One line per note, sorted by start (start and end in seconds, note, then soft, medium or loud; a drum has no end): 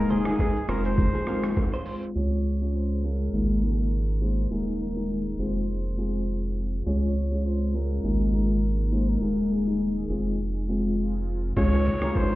0.00 0.13 D#1 loud
0.00 0.22 G#3 loud
0.00 0.22 A#3 medium
0.00 0.22 D#4 medium
0.00 0.67 D#4 medium
0.00 0.22 G#4 loud
0.00 0.12 A#4 loud
0.09 0.69 G#4 loud
0.09 0.19 C5 medium
0.09 low conga medium
0.09 shaker medium
0.25 0.47 G#3 medium
0.25 0.47 A#3 medium
0.25 0.47 D#4 medium
0.25 0.47 G#4 medium
0.25 0.34 G#4 medium
0.25 cross-stick loud
0.25 low bongo medium
0.25 shaker loud
0.39 0.49 G#4 medium
0.39 kick loud
0.39 high bongo medium
0.39 shaker medium
0.56 shaker medium
0.68 1.11 F1 loud
0.68 0.91 G#3 medium
0.68 2.14 G#3 medium
0.68 0.91 C4 medium
0.68 2.14 C4 medium
0.68 2.14 F4 medium
0.68 0.91 F4 medium
0.68 0.91 G#4 medium
0.68 0.84 A#4 medium
0.68 0.85 C5 medium
0.68 cross-stick loud
0.68 shaker medium
0.85 0.93 A#4 medium
0.85 1.69 C5 medium
0.85 low bongo medium
0.85 shaker medium
0.98 kick loud
0.98 low conga medium
0.98 shaker medium
1.15 1.22 G#4 medium
1.15 low bongo medium
1.15 shaker medium
1.27 1.50 G#3 medium
1.27 1.50 C4 medium
1.27 1.50 F4 medium
1.27 1.50 G#4 medium
1.27 1.37 A#4 medium
1.27 cross-stick medium
1.27 high bongo medium
1.27 shaker medium
1.43 cross-stick loud
1.43 low bongo medium
1.43 shaker loud
1.57 kick medium
1.57 high bongo medium
1.57 shaker medium
1.73 1.81 C5 medium
1.73 shaker medium
1.86 1.96 C5 medium
1.86 open hi-hat medium
1.86 shaker medium
2.03 shaker loud
2.15 3.29 C#2 medium
2.15 3.32 C#3 medium
2.15 2.38 G#3 medium
2.15 2.38 C#4 medium
2.15 3.32 C#4 medium
2.15 3.32 F4 medium
2.15 2.38 F4 medium
2.15 3.32 G#4 medium
2.15 2.39 G#4 loud
2.15 2.77 C#5 loud
2.61 3.01 G#3 medium
2.61 3.01 C#4 medium
2.61 3.01 F4 medium
2.61 3.01 G#4 medium
2.75 3.06 C5 loud
3.03 3.31 G#3 medium
3.03 3.31 C#4 medium
3.03 3.31 F4 medium
3.03 3.31 G#4 medium
3.03 3.63 A#4 medium
3.33 4.47 G#1 medium
3.33 3.60 G#3 medium
3.33 4.50 G#3 medium
3.33 3.60 A#3 medium
3.33 4.50 A#3 medium
3.33 3.61 D#4 medium
3.33 5.37 D#4 medium
3.33 3.61 G#4 loud
3.62 3.85 G#3 medium
3.62 3.85 A#3 medium
3.62 3.85 D#4 medium
3.62 3.86 G#4 medium
3.62 3.73 A#4 medium
3.71 3.81 G#4 medium
3.79 4.24 A#4 medium
4.21 4.44 G#3 medium
4.21 4.44 A#3 medium
4.21 4.44 D#4 medium
4.21 4.44 G#4 medium
4.21 4.53 C5 medium
4.51 5.35 D#1 medium
4.51 4.92 G#3 medium
4.51 4.93 A#3 medium
4.51 4.93 D#4 medium
4.51 4.93 G#4 loud
4.51 4.81 A#4 medium
4.81 5.42 A#4 loud
4.96 5.18 G#3 medium
4.96 5.18 A#3 medium
4.96 5.18 D#4 medium
4.96 5.18 G#4 medium
5.39 6.82 F1 medium
5.39 5.62 G#3 medium
5.39 6.85 G#3 medium
5.39 6.85 C4 medium
5.39 5.62 C4 medium
5.39 8.01 F4 medium
5.39 5.62 F4 medium
5.39 5.62 G#4 medium
5.39 5.56 C5 medium
5.56 6.40 C5 medium
5.98 6.21 G#3 medium
5.98 6.21 C4 medium
5.98 6.21 F4 medium
5.98 6.21 G#4 medium
6.86 8.00 C#2 medium
6.86 8.03 C#3 medium
6.86 7.09 G#3 medium
6.86 8.03 C#4 medium
6.86 7.09 C#4 medium
6.86 7.09 F4 medium
6.86 8.03 G#4 medium
6.86 7.09 G#4 loud
6.86 7.47 C#5 loud
7.32 7.71 G#3 medium
7.32 7.71 C#4 medium
7.32 7.71 F4 medium
7.32 7.71 G#4 medium
7.46 7.77 C5 loud
7.74 8.02 G#3 medium
7.74 8.02 C#4 medium
7.74 8.02 F4 medium
7.74 8.02 G#4 medium
7.74 8.34 A#4 loud
8.04 9.17 G#1 medium
8.04 8.31 G#3 medium
8.04 9.20 G#3 medium
8.04 9.20 A#3 medium
8.04 8.31 A#3 medium
8.04 10.08 D#4 medium
8.04 8.31 D#4 medium
8.04 8.31 G#4 loud
8.33 8.56 G#3 medium
8.33 8.56 A#3 medium
8.33 8.56 D#4 medium
8.33 8.56 G#4 medium
8.33 8.95 A#4 loud
8.92 9.15 G#3 medium
8.92 9.15 A#3 medium
8.92 9.15 D#4 medium
8.92 9.15 G#4 medium
8.92 9.11 C5 medium
9.09 9.54 A#4 medium
9.21 10.06 D#1 medium
9.21 9.63 G#3 medium
9.21 9.63 A#3 medium
9.21 9.63 D#4 medium
9.21 9.63 G#4 loud
9.52 10.69 G#4 medium
9.67 9.88 G#3 medium
9.67 9.88 A#3 medium
9.67 9.88 D#4 medium
9.67 9.89 G#4 medium
10.09 11.53 F1 medium
10.09 10.32 G#3 medium
10.09 11.55 G#3 medium
10.09 11.55 C4 medium
10.09 10.33 C4 medium
10.09 11.55 F4 medium
10.09 10.33 F4 medium
10.09 10.33 G#4 medium
10.68 10.91 G#3 medium
10.68 10.91 C4 medium
10.68 10.91 F4 medium
10.68 10.92 G#4 medium
11.57 11.90 C#2 loud
11.57 11.79 G#3 medium
11.57 11.80 C#4 medium
11.57 11.80 F4 medium
11.57 11.80 G#4 loud
11.57 12.18 C#5 loud
11.57 kick loud
11.57 crash loud
11.57 low conga medium
11.57 shaker medium
11.73 high bongo medium
11.73 shaker medium
11.85 11.96 C#5 medium
11.85 low conga medium
11.85 shaker medium
12.02 12.35 G#3 medium
12.02 12.35 C#4 medium
12.02 12.35 F4 medium
12.02 12.35 G#4 medium
12.02 12.10 A#4 medium
12.02 cross-stick loud
12.02 low bongo medium
12.02 shaker loud
12.16 12.35 C5 loud
12.16 kick loud
12.16 high bongo medium
12.16 shaker medium